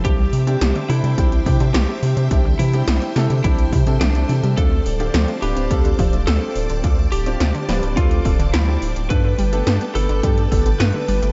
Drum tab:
HH |x-oxxxoxxxoxx-ox|x-oxxxoxxxoxxxox|x-oxxxoxxxoxx-ox|x-oxxxoxxxoxx-ox|
SD |----o-------o---|----o-o-----o---|----o-------o---|----o-o-----o---|
BD |o-------o-o-----|o-------o-o-----|o-------o-o-----|o-------o-o-----|

HH |x-oxxxoxxxoxx-ox|
SD |----o-------o---|
BD |o-------o-o-----|